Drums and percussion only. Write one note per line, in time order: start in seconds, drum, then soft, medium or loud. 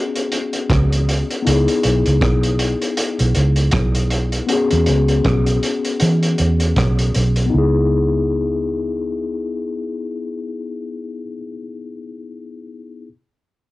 0.15 closed hi-hat medium
0.32 closed hi-hat medium
0.53 closed hi-hat soft
0.70 kick loud
0.70 cross-stick medium
0.70 closed hi-hat loud
0.92 closed hi-hat medium
1.09 closed hi-hat medium
1.30 closed hi-hat soft
1.47 closed hi-hat medium
1.68 closed hi-hat medium
1.83 closed hi-hat medium
2.06 closed hi-hat soft
2.21 kick loud
2.21 cross-stick loud
2.21 closed hi-hat medium
2.44 closed hi-hat medium
2.59 closed hi-hat medium
2.82 closed hi-hat soft
2.97 closed hi-hat loud
3.19 closed hi-hat medium
3.35 closed hi-hat medium
3.56 closed hi-hat soft
3.72 kick loud
3.72 cross-stick loud
3.72 closed hi-hat loud
3.95 closed hi-hat medium
4.11 closed hi-hat medium
4.32 closed hi-hat soft
4.49 closed hi-hat medium
4.71 closed hi-hat soft
4.86 closed hi-hat medium
5.08 closed hi-hat soft
5.24 kick medium
5.24 cross-stick loud
5.24 closed hi-hat medium
5.46 closed hi-hat medium
5.63 closed hi-hat medium
5.85 closed hi-hat soft
6.00 closed hi-hat loud
6.23 closed hi-hat medium
6.38 closed hi-hat medium
6.60 closed hi-hat soft
6.76 kick medium
6.76 cross-stick loud
6.76 closed hi-hat loud
6.99 closed hi-hat soft
7.14 closed hi-hat medium
7.36 closed hi-hat soft